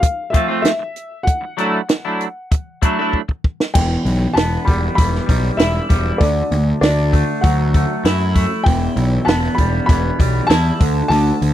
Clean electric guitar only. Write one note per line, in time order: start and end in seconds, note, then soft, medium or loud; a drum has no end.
0.02 muted clean electric guitar stroke soft
0.33 0.48 F3 medium
0.33 0.48 A3 medium
0.33 0.47 C4 medium
0.33 0.47 F4 medium
0.48 0.69 F3 medium
0.48 0.69 A3 medium
0.48 0.69 C4 medium
0.48 0.69 F4 medium
0.79 muted clean electric guitar stroke soft
1.41 muted clean electric guitar stroke medium
1.57 1.77 F#3 medium
1.57 1.78 A3 medium
1.57 1.78 D4 medium
1.57 1.78 E4 medium
1.89 muted clean electric guitar stroke soft
2.05 2.25 F#3 medium
2.05 2.25 A3 medium
2.05 2.25 D4 medium
2.05 2.25 E4 medium
2.51 muted clean electric guitar stroke soft
2.82 2.97 F#3 medium
2.82 2.97 A3 medium
2.82 2.97 D4 medium
2.82 2.98 E4 medium
2.99 3.19 F#3 medium
2.99 3.18 A3 medium
2.99 3.18 D4 medium
2.99 3.18 E4 medium
3.28 muted clean electric guitar stroke soft
3.74 5.28 E2 medium
4.35 5.89 B3 medium
4.66 5.25 G3 medium
4.96 6.23 E3 medium
5.26 5.88 G3 medium
5.59 6.23 E4 medium
5.89 6.20 G3 medium
6.20 7.74 D3 medium
6.81 8.35 D4 medium
7.13 7.73 A3 medium
7.43 8.66 F#3 medium
7.74 8.34 A3 medium
8.05 10.49 E4 medium
8.35 8.66 A3 medium
8.65 10.19 E2 medium
9.25 10.80 B3 medium
9.58 10.18 G3 medium
9.89 10.81 E3 medium
10.19 10.81 G3 medium
10.50 10.80 E4 medium
10.80 11.11 D3 medium
11.12 11.54 D3 medium